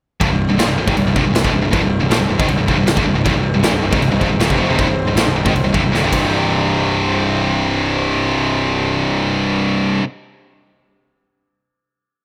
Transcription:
0.20 C1 C2 G2, kick, china
0.30 C1 C2 G2
0.49 C1 C2 G2
0.58 A#1 A#2 F3, snare, china
0.68 C1 C2 G2
0.78 C1 C2 G2
0.87 G#1 G#2 D#3, kick
0.97 C1 C2 G2, china
1.06 C1 C2 G2
1.16 C1 C2 G2, kick
1.25 C1 C2 G2
1.33 C1 C2 G2, snare, china
1.43 C#1 C#2 G#2, kick
1.53 C1 C2 G2
1.62 C1 C2 G2
1.71 C1 C2 G2, kick, china
1.81 C1 C2 G2
2.00 C1 C2 G2
2.10 A#1 A#2 F3, snare, china
2.20 C1 C2 G2
2.28 C1 C2 G2
2.39 G#1 G#2 D#3, kick
2.48 C1 C2 G2, china
2.58 C1 C2 G2
2.68 C1 C2 G2, kick
2.78 C1 C2 G2
2.87 C1 C2 G2, snare, china
2.97 C#1 C#2 G#2, kick
3.06 C1 C2 G2
3.15 C1 C2 G2
3.23 C1 C2 G2 G3 C4 D#4 C5, kick, china
3.34 C1 C2 G2
3.54 C1 C2 G2
3.62 A#1 A#2 F3, snare, china
3.72 C1 C2 G2
3.82 C1 C2 G2
3.90 G#1 G#2 D#3, kick
4.01 C1 C2 G2, china
4.11 C1 C2 G2
4.20 C1 C2 G2, kick
4.30 C1 C2 G2
4.39 D#1 D#2 A#2, snare, china
4.48 C1 C2 G2, kick
4.58 F#1 F#2 C#3
4.68 F1 F2 C3
4.79 C1 C2 G2, kick, china
4.87 C1 C2 G2
5.07 C1 C2 G2
5.16 A#1 A#2 F3, snare, china
5.26 C1 C2 G2
5.35 C1 C2 G2
5.45 G#1 G#2 D#3, kick
5.55 C1 C2 G2, china
5.64 C1 C2 G2
5.72 C1 C2 G2, kick
5.82 C1 C2 G2
5.92 D#1 D#2 A#2, snare
6.02 C1 C2 G2
6.10 C1 C2 G2 G3 C4 D#4 C5, kick, crash
6.14 C3

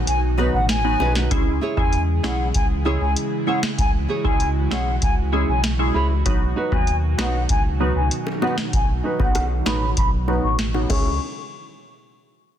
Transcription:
Already playing: B2 D#3 F#3 D#4 F#4
0.07 B1 G#5, closed hi-hat
0.38 F#3 B3 D#4 F#4 B4, high bongo
0.54 A1 F#5
0.69 G#5, snare, closed hi-hat
0.84 F#3 B3 D#4 F#4
1.00 B1 D#4 F#4 B4, high bongo, low bongo
1.15 D#4 F#4 B4, snare
1.31 C#2 C#3 E3 G#3 C#4 E4 G#4, kick, closed hi-hat
1.61 E4 G#4 C#5
1.77 E2 G#3 C#4 E4 G#4 G#5, kick
1.93 closed hi-hat
2.23 B1 G#3 C#4 E4 G#4 C#5 F#5, snare
2.54 C#2 G#5, kick, closed hi-hat
2.85 G#3 C#4 E4 G#4 C#5
3.01 C#2 G#5
3.16 closed hi-hat
3.47 G#3 C#4 E4 G#4 C#5 F#5
3.63 snare
3.78 C#2 F#4 G#5, kick, closed hi-hat
4.09 E4 G#4 C#5
4.24 C#2 G#3 C#4 E4 G#4 G#5, kick
4.40 closed hi-hat
4.70 B1 G#3 C#4 E4 G#4 C#5 F#5, snare
5.02 C#2 G#5, kick, closed hi-hat
5.32 G#3 C#4 E4 G#4 C#5
5.48 B1 G#5
5.64 snare, closed hi-hat
5.79 G#3 C#4 E4 G#4
5.94 C#2 E4 G#4 C#5 B5
6.10 muted nylon-string guitar stroke
6.26 B1 B2 D#3 F#3 B3 D#4 F#4, kick, closed hi-hat
6.56 D#4 F#4 B4
6.72 D#2 F#3 B3 D#4 F#4 G#5, kick
6.87 closed hi-hat
7.18 B1 F#3 B3 D#4 F#4 B4 F#5, snare, high bongo
7.49 C#2 G#5, kick, closed hi-hat
7.80 F#3 B3 D#4 F#4 B4
7.96 C#2 G#5
8.11 closed hi-hat
8.27 high bongo
8.42 F#3 B3 D#4 F#4 B4 F#5, high bongo, low bongo
8.58 snare
8.73 B1 G#5, kick, closed hi-hat
9.04 D#4 F#4 B4
9.19 B1 F#3 B3 D#4 F#4 F#5, kick, high bongo
9.35 cross-stick, closed hi-hat, high bongo
9.66 A1 F#3 B3 D#4 F#4 B4 B5, snare, high bongo
9.97 B1 B5, kick, closed hi-hat
10.27 F#3 B3 D#4 F#4 B4, high bongo
10.44 A1 C#6
10.59 snare, closed hi-hat
10.74 F#3 B3 D#4 F#4, high bongo
10.89 C#2 G#3 C#4 E4 G#4 C#5 C#6, kick, crash, high bongo

